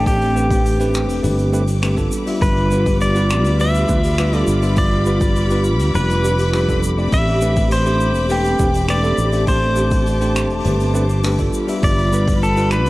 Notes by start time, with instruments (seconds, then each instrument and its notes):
Already playing: fretless electric bass A1, tine electric piano A3 C4 D4 G4 D5, string section C4 G4 D6
0.06 pedal steel guitar G4, kick, open hi-hat, shaker
0.21 open hi-hat
0.35 tine electric piano A3 C4 D4 G4 B4, shaker
0.50 kick, open hi-hat, shaker
0.66 open hi-hat, shaker
0.79 tine electric piano A3 C4 D4 G4 B4, open hi-hat, shaker
0.94 finger snap, shaker
1.09 fretless electric bass E1, open hi-hat, shaker
1.23 fretless electric bass G1, tine electric piano A3 C4 D4 G4 B4, open hi-hat, shaker
1.39 open hi-hat, shaker
1.52 tine electric piano A3 C4 D4 G4 B4, shaker
1.68 open hi-hat, shaker
1.82 tine electric piano A3 C4 D4 G4 B4, finger snap, open hi-hat, shaker
1.97 tine electric piano G3 B3 D4 F4 A4, kick, open hi-hat, shaker
2.12 string section F4 B5, shaker
2.26 tine electric piano G3 B3 D4 F4 E5, open hi-hat, shaker
2.41 fretless electric bass G1, pedal steel guitar B4, kick, open hi-hat, shaker
2.56 open hi-hat
2.70 tine electric piano G3 B3 D4 F4 B4, shaker
2.86 kick, open hi-hat, shaker
3.01 pedal steel guitar D5, open hi-hat, shaker
3.14 tine electric piano G3 B3 D4 F4 B4, open hi-hat, shaker
3.30 finger snap, shaker
3.44 fretless electric bass D2, open hi-hat, shaker
3.58 tine electric piano G3 B3 D4 F4 B4, pedal steel guitar E5, open hi-hat, shaker
3.74 open hi-hat, shaker
3.88 fretless electric bass D2, tine electric piano G3 B3 D4 F4 B4, kick, shaker
4.03 open hi-hat, shaker
4.17 tine electric piano G3 B3 D4 F4 B4, finger snap, open hi-hat, shaker
4.32 tine electric piano G3 B3 D4 F4 A4, open hi-hat, shaker
4.38 pedal steel guitar D5
4.47 fretless electric bass G1, shaker
4.62 tine electric piano G3 B3 D4 F4 E5, open hi-hat, shaker
4.76 pedal steel guitar D5, kick, open hi-hat, shaker
4.91 open hi-hat
5.05 tine electric piano G3 B3 D4 F4 B4, shaker
5.21 kick, open hi-hat, shaker
5.36 open hi-hat, shaker
5.50 tine electric piano G3 B3 D4 F4 B4, open hi-hat, shaker
5.64 shaker
5.79 fretless electric bass D2, open hi-hat, shaker
5.94 fretless electric bass F1, tine electric piano G3 B3 D4 F4 B4, pedal steel guitar B4, open hi-hat, shaker
6.09 open hi-hat, shaker
6.23 tine electric piano G3 B3 D4 F4 B4, shaker
6.39 open hi-hat, shaker
6.53 tine electric piano G3 B3 D4 F4 B4, finger snap, open hi-hat, shaker
6.67 tine electric piano G3 B3 D4 F4 A4, kick, open hi-hat, shaker
6.83 shaker
6.97 tine electric piano A3 C4 D4 G4 D5, open hi-hat, shaker
7.12 fretless electric bass A1, string section C4, pedal steel guitar E5, kick, open hi-hat, shaker
7.27 open hi-hat
7.41 tine electric piano A3 C4 D4 G4 B4, shaker
7.55 kick, open hi-hat, shaker
7.71 pedal steel guitar C5, open hi-hat, shaker
7.85 tine electric piano A3 C4 D4 G4 C5, open hi-hat, shaker
8.00 shaker
8.14 fretless electric bass E1, open hi-hat, shaker
8.29 tine electric piano A3 C4 D4 G4 B4, pedal steel guitar G4, open hi-hat, shaker
8.44 open hi-hat, shaker
8.58 fretless electric bass E1, tine electric piano A3 C4 D4 G4 B4, kick, shaker
8.74 open hi-hat, shaker
8.88 tine electric piano A3 C4 D4 G4 B4, pedal steel guitar D5, finger snap, open hi-hat, shaker
9.03 tine electric piano A3 C4 D4 G4 A4, open hi-hat, shaker
9.18 fretless electric bass A1, shaker
9.32 tine electric piano A3 C4 D4 G4 D5, open hi-hat, shaker
9.47 pedal steel guitar C5, string section A5, kick, open hi-hat, shaker
9.62 open hi-hat
9.76 tine electric piano A3 C4 D4 G4 C5, shaker
9.91 kick, open hi-hat, shaker
10.06 open hi-hat, shaker
10.20 tine electric piano A3 C4 D4 G4 C5, open hi-hat, shaker
10.36 finger snap, shaker
10.50 fretless electric bass E1, open hi-hat, shaker
10.64 fretless electric bass G1, tine electric piano A3 C4 D4 G4 B4, open hi-hat, shaker
10.80 open hi-hat, shaker
10.94 tine electric piano A3 C4 D4 G4 B4, shaker
11.09 open hi-hat, shaker
11.23 tine electric piano A3 C4 D4 G4 B4, finger snap, open hi-hat, shaker
11.38 tine electric piano G3 B3 D4 F4 A4, kick, open hi-hat, shaker
11.53 string section F4 B5, shaker
11.67 tine electric piano G3 B3 D4 F4 E5, open hi-hat, shaker
11.82 fretless electric bass G1, pedal steel guitar D5, kick, open hi-hat, shaker
11.98 open hi-hat
12.12 tine electric piano G3 B3 D4 F4 B4, shaker
12.27 kick, open hi-hat, shaker
12.42 pedal steel guitar A4, open hi-hat, shaker
12.56 tine electric piano G3 B3 D4 F4 B4, open hi-hat, shaker
12.71 pedal steel guitar B4, finger snap, shaker
12.86 fretless electric bass D2, open hi-hat, shaker